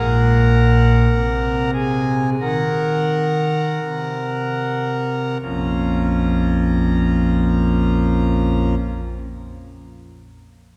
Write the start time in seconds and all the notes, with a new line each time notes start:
Already playing: A#1 A#2 A#4 F#5 A#5
1.11 C3
1.73 G#4 G#5
2.40 D#3 A#4 F#5 A#5
3.83 C3
5.42 A#1 F2 F3 A#3 C#4 F4 A#5